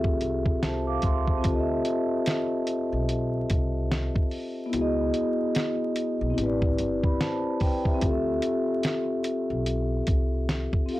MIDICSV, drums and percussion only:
0, 0, Header, 1, 2, 480
1, 0, Start_track
1, 0, Tempo, 821918
1, 843, Time_signature, 4, 2, 24, 8
1, 6423, End_track
2, 0, Start_track
2, 0, Title_t, "Drums"
2, 24, Note_on_c, 9, 36, 85
2, 83, Note_off_c, 9, 36, 0
2, 121, Note_on_c, 9, 42, 59
2, 179, Note_off_c, 9, 42, 0
2, 266, Note_on_c, 9, 36, 82
2, 325, Note_off_c, 9, 36, 0
2, 366, Note_on_c, 9, 38, 88
2, 368, Note_on_c, 9, 42, 61
2, 425, Note_off_c, 9, 38, 0
2, 426, Note_off_c, 9, 42, 0
2, 596, Note_on_c, 9, 42, 66
2, 602, Note_on_c, 9, 36, 98
2, 654, Note_off_c, 9, 42, 0
2, 661, Note_off_c, 9, 36, 0
2, 745, Note_on_c, 9, 36, 79
2, 803, Note_off_c, 9, 36, 0
2, 840, Note_on_c, 9, 42, 76
2, 845, Note_on_c, 9, 36, 103
2, 899, Note_off_c, 9, 42, 0
2, 904, Note_off_c, 9, 36, 0
2, 1079, Note_on_c, 9, 42, 71
2, 1138, Note_off_c, 9, 42, 0
2, 1320, Note_on_c, 9, 42, 80
2, 1328, Note_on_c, 9, 38, 109
2, 1379, Note_off_c, 9, 42, 0
2, 1387, Note_off_c, 9, 38, 0
2, 1559, Note_on_c, 9, 42, 77
2, 1617, Note_off_c, 9, 42, 0
2, 1804, Note_on_c, 9, 42, 72
2, 1862, Note_off_c, 9, 42, 0
2, 2042, Note_on_c, 9, 42, 60
2, 2046, Note_on_c, 9, 36, 89
2, 2100, Note_off_c, 9, 42, 0
2, 2104, Note_off_c, 9, 36, 0
2, 2287, Note_on_c, 9, 38, 100
2, 2288, Note_on_c, 9, 42, 60
2, 2345, Note_off_c, 9, 38, 0
2, 2346, Note_off_c, 9, 42, 0
2, 2427, Note_on_c, 9, 36, 94
2, 2485, Note_off_c, 9, 36, 0
2, 2519, Note_on_c, 9, 46, 46
2, 2577, Note_off_c, 9, 46, 0
2, 2762, Note_on_c, 9, 42, 67
2, 2821, Note_off_c, 9, 42, 0
2, 3000, Note_on_c, 9, 42, 65
2, 3059, Note_off_c, 9, 42, 0
2, 3240, Note_on_c, 9, 42, 78
2, 3248, Note_on_c, 9, 38, 116
2, 3298, Note_off_c, 9, 42, 0
2, 3307, Note_off_c, 9, 38, 0
2, 3479, Note_on_c, 9, 42, 68
2, 3537, Note_off_c, 9, 42, 0
2, 3725, Note_on_c, 9, 42, 74
2, 3784, Note_off_c, 9, 42, 0
2, 3866, Note_on_c, 9, 36, 86
2, 3924, Note_off_c, 9, 36, 0
2, 3962, Note_on_c, 9, 42, 61
2, 4020, Note_off_c, 9, 42, 0
2, 4108, Note_on_c, 9, 36, 79
2, 4166, Note_off_c, 9, 36, 0
2, 4208, Note_on_c, 9, 38, 98
2, 4209, Note_on_c, 9, 42, 62
2, 4267, Note_off_c, 9, 38, 0
2, 4268, Note_off_c, 9, 42, 0
2, 4439, Note_on_c, 9, 46, 45
2, 4443, Note_on_c, 9, 36, 101
2, 4497, Note_off_c, 9, 46, 0
2, 4502, Note_off_c, 9, 36, 0
2, 4586, Note_on_c, 9, 36, 79
2, 4644, Note_off_c, 9, 36, 0
2, 4680, Note_on_c, 9, 42, 74
2, 4685, Note_on_c, 9, 36, 97
2, 4739, Note_off_c, 9, 42, 0
2, 4744, Note_off_c, 9, 36, 0
2, 4919, Note_on_c, 9, 42, 70
2, 4977, Note_off_c, 9, 42, 0
2, 5159, Note_on_c, 9, 42, 81
2, 5167, Note_on_c, 9, 38, 109
2, 5217, Note_off_c, 9, 42, 0
2, 5225, Note_off_c, 9, 38, 0
2, 5397, Note_on_c, 9, 42, 72
2, 5455, Note_off_c, 9, 42, 0
2, 5643, Note_on_c, 9, 42, 84
2, 5701, Note_off_c, 9, 42, 0
2, 5880, Note_on_c, 9, 42, 63
2, 5885, Note_on_c, 9, 36, 87
2, 5938, Note_off_c, 9, 42, 0
2, 5944, Note_off_c, 9, 36, 0
2, 6126, Note_on_c, 9, 38, 103
2, 6127, Note_on_c, 9, 42, 59
2, 6184, Note_off_c, 9, 38, 0
2, 6185, Note_off_c, 9, 42, 0
2, 6266, Note_on_c, 9, 36, 92
2, 6324, Note_off_c, 9, 36, 0
2, 6357, Note_on_c, 9, 46, 47
2, 6415, Note_off_c, 9, 46, 0
2, 6423, End_track
0, 0, End_of_file